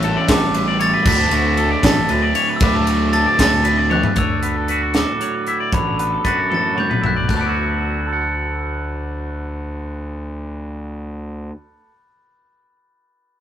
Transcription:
0.00 0.15 A1 loud
0.00 1.05 A2 medium
0.00 1.05 E3 loud
0.00 1.06 G3 loud
0.00 1.06 C#4 loud
0.00 1.06 E4 loud
0.00 0.17 A4 medium
0.00 0.32 E6 loud
0.00 ride medium
0.17 0.28 D5 medium
0.28 0.92 A1 medium
0.28 0.55 A4 medium
0.28 0.83 D6 medium
0.28 kick medium
0.28 snare loud
0.28 ride loud
0.54 0.67 B4 medium
0.54 ride medium
0.68 0.79 D5 medium
0.80 0.93 C#5 medium
0.80 1.08 A6 loud
0.80 ride medium
0.94 1.05 B4 medium
1.05 1.27 D2 loud
1.05 2.60 D3 medium
1.05 2.62 F#3 loud
1.05 2.62 A3 medium
1.05 2.64 D4 loud
1.05 1.18 B4 medium
1.05 1.87 B6 loud
1.05 kick loud
1.05 crash loud
1.18 1.32 A4 medium
1.31 1.74 D2 medium
1.31 1.58 F#4 medium
1.31 ride medium
1.57 1.71 A4 medium
1.57 ride medium
1.72 1.84 D5 medium
1.83 2.05 A1 medium
1.83 2.10 A4 medium
1.83 2.58 A6 medium
1.83 kick medium
1.83 snare loud
1.83 ride loud
2.09 2.31 D2 medium
2.09 2.22 B4 medium
2.09 ride medium
2.22 2.35 D5 medium
2.35 2.49 C#5 medium
2.35 ride medium
2.49 2.61 B4 medium
2.56 2.62 E6 medium
2.56 ride loud
2.61 3.25 D2 loud
2.61 4.15 D3 medium
2.61 4.16 F#3 loud
2.61 4.16 A3 loud
2.61 4.17 D4 loud
2.61 2.75 B4 medium
2.61 3.88 D6 medium
2.61 kick loud
2.75 2.88 A4 medium
2.87 3.13 F#4 medium
2.87 ride medium
3.13 3.26 A4 medium
3.13 3.25 A6 loud
3.13 ride medium
3.26 3.39 D5 medium
3.39 4.03 D2 medium
3.39 3.65 A4 medium
3.39 3.94 A6 loud
3.39 kick medium
3.39 snare loud
3.39 ride loud
3.64 3.78 B4 medium
3.64 ride medium
3.78 3.90 D5 medium
3.90 4.03 C#5 medium
3.90 4.16 F#6 medium
3.90 high tom medium
4.03 4.16 B4 medium
4.03 floor tom medium
4.16 5.02 D2 medium
4.16 5.73 D3 medium
4.16 4.42 C#5 medium
4.16 4.66 E6 medium
4.16 kick loud
4.16 closed hi-hat medium
4.43 5.99 B3 soft
4.43 4.56 B4 medium
4.43 closed hi-hat medium
4.56 4.69 A4 medium
4.68 6.26 F#4 medium
4.68 4.82 B4 medium
4.68 closed hi-hat medium
4.83 4.96 F#4 medium
4.94 5.70 A2 medium
4.94 5.22 A4 medium
4.94 5.75 D6 medium
4.94 snare loud
4.94 closed hi-hat medium
5.20 6.75 F#3 medium
5.20 5.35 C#5 medium
5.20 closed hi-hat medium
5.35 5.47 B4 medium
5.47 5.76 E4 medium
5.47 5.60 E5 medium
5.47 closed hi-hat medium
5.60 5.73 D5 medium
5.72 6.15 A1 medium
5.72 7.26 D3 medium
5.72 5.98 C#5 medium
5.72 5.98 B5 medium
5.72 kick loud
5.72 closed hi-hat medium
5.98 7.26 B3 medium
5.98 6.12 B4 medium
5.98 6.26 B5 medium
5.98 closed hi-hat medium
6.12 6.24 A4 medium
6.24 6.88 F#2 medium
6.24 7.48 F#4 medium
6.24 6.38 B4 medium
6.24 6.52 A6 medium
6.24 kick medium
6.24 closed hi-hat medium
6.37 6.51 F#4 medium
6.50 7.26 A2 medium
6.50 6.77 A4 medium
6.50 high tom medium
6.54 6.79 A6 medium
6.75 7.25 F#3 medium
6.75 6.90 C#5 medium
6.75 mid tom medium
6.80 7.03 G6 medium
6.90 7.03 B4 medium
6.90 mid tom medium
7.01 7.24 B1 medium
7.01 7.25 E4 medium
7.01 7.16 E5 medium
7.01 floor tom medium
7.06 7.29 F#6 medium
7.16 7.27 D5 medium
7.28 11.50 D2 medium
7.28 11.52 D3 medium
7.28 7.36 D5 medium
7.28 11.51 F#6 medium
7.28 kick medium
7.28 splash medium
7.33 11.58 F#3 medium
7.33 11.53 F#5 medium
7.33 7.41 A5 medium
7.39 8.06 B3 medium
7.39 11.61 D6 medium
7.44 11.68 E4 medium
7.49 8.12 F#4 soft
8.07 11.91 A4 medium
8.13 11.94 F#5 medium

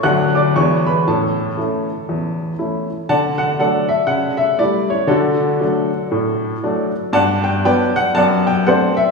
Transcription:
0.03 0.47 D2 medium
0.03 0.34 F#3 medium
0.03 0.32 A3 soft
0.03 0.33 D4 soft
0.03 0.33 F#4 soft
0.03 0.33 F#5 medium
0.03 0.34 F#6 loud
0.35 0.55 D5 medium
0.35 0.56 D6 medium
0.56 0.99 E2 medium
0.56 0.85 G#3 soft
0.56 0.84 D4 soft
0.56 0.84 E4 soft
0.56 0.84 C#5 medium
0.56 0.86 C#6 medium
0.87 1.06 B4 soft
0.87 1.07 B5 medium
1.07 1.50 A2 medium
1.07 1.37 C#4 soft
1.07 2.56 A4 medium
1.07 2.59 A5 medium
1.57 1.85 A3 soft
1.57 1.86 C#4 soft
1.57 1.86 E4 soft
2.09 2.51 E2 medium
2.59 2.86 A3 soft
2.59 2.87 C#4 soft
2.59 2.86 E4 soft
3.09 3.52 D3 medium
3.09 3.37 D5 medium
3.09 3.37 F#5 medium
3.09 3.39 A5 medium
3.38 3.58 F#5 medium
3.59 3.87 F#3 soft
3.59 3.87 A3 soft
3.59 3.88 D4 medium
3.59 3.88 A4 medium
3.59 3.88 D5 medium
3.59 3.89 F#5 medium
3.89 4.09 E5 medium
4.07 4.51 C#3 medium
4.07 4.38 F#5 medium
4.37 4.59 E5 medium
4.59 4.87 G3 soft
4.59 4.88 A3 soft
4.59 4.88 E4 medium
4.59 4.89 D5 medium
4.90 5.11 C#5 medium
5.07 5.52 D3 medium
5.07 5.60 D4 medium
5.07 6.88 F#4 medium
5.07 6.91 A4 medium
5.60 5.88 F#3 soft
5.60 5.89 A3 soft
5.60 5.89 D4 medium
6.12 6.55 A2 medium
6.63 6.91 F#3 soft
6.63 6.91 A3 soft
6.63 6.91 D4 medium
7.13 7.56 G2 medium
7.13 7.41 D5 medium
7.13 7.41 F#5 medium
7.13 7.43 A5 loud
7.44 7.64 G5 medium
7.65 7.92 F#3 medium
7.65 7.93 B3 medium
7.65 7.93 D4 medium
7.65 7.92 B4 medium
7.65 7.92 D5 medium
7.65 7.94 G5 medium
7.96 8.15 F#5 loud
8.15 8.58 F#2 medium
8.15 8.43 D5 medium
8.15 8.43 F#5 medium
8.15 8.44 A5 loud
8.47 8.66 G5 medium
8.67 8.94 A3 medium
8.67 8.94 C4 soft
8.67 8.95 D4 soft
8.67 8.94 C5 medium
8.67 8.94 D5 medium
8.67 8.95 F#5 medium
8.97 9.11 E5 medium

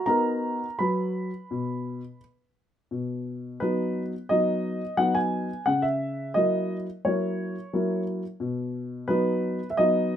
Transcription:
0.06 0.58 B3 soft
0.06 0.65 D#4 soft
0.06 0.65 F#4 soft
0.06 0.75 A#4 medium
0.06 0.79 A#5 medium
0.79 1.29 F#3 soft
0.79 2.17 B4 soft
0.79 2.20 B5 medium
1.51 2.00 B2 soft
2.91 3.59 B2 soft
3.60 4.12 F#3 soft
3.60 4.12 B3 soft
3.60 4.12 D#4 soft
3.60 4.02 B4 medium
4.29 4.81 F#3 soft
4.29 4.81 B3 soft
4.29 4.81 D#4 soft
4.29 4.99 D#5 medium
4.97 5.48 F#3 soft
4.97 5.48 B3 soft
4.97 5.49 D#4 soft
4.97 5.16 F#5 medium
5.15 5.63 G#5 medium
5.66 6.34 C#3 soft
5.66 5.84 F#5 medium
5.82 6.31 E5 medium
6.34 6.85 F#3 soft
6.34 6.86 A#3 soft
6.34 6.86 E4 soft
6.34 6.76 D#5 medium
7.05 7.55 F#3 soft
7.05 7.55 A#3 soft
7.05 7.55 E4 soft
7.05 8.03 C#5 medium
7.73 8.22 F#3 soft
7.73 8.22 A#3 soft
7.73 8.22 E4 soft
8.40 9.06 B2 soft
9.08 9.58 F#3 soft
9.08 9.58 B3 soft
9.08 9.59 D#4 soft
9.08 9.66 B4 medium
9.70 9.77 E5 medium
9.77 10.16 F#3 soft
9.77 10.16 B3 soft
9.77 10.16 D#4 soft
9.77 10.16 D#5 medium

